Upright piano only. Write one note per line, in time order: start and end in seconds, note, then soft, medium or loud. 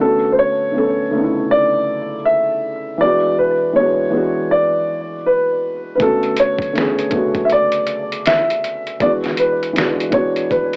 0.01 0.31 A4 medium
0.32 0.38 C5 medium
0.39 1.47 C#5 medium
1.51 2.22 D5 loud
2.25 3.02 E5 medium
3.01 3.35 D5 loud
3.38 3.73 B4 medium
3.76 4.53 C#5 medium
4.51 5.28 D5 medium
5.26 5.94 B4 medium
5.95 6.00 B4 medium
6.02 6.36 A4 medium
6.40 7.49 C#5 medium
7.45 7.50 E5 medium
7.52 8.28 D5 medium
8.27 9.03 E5 medium
9.02 9.10 D5 medium
9.39 10.09 B4 medium
10.14 10.48 C#5 medium
10.51 10.76 B4 medium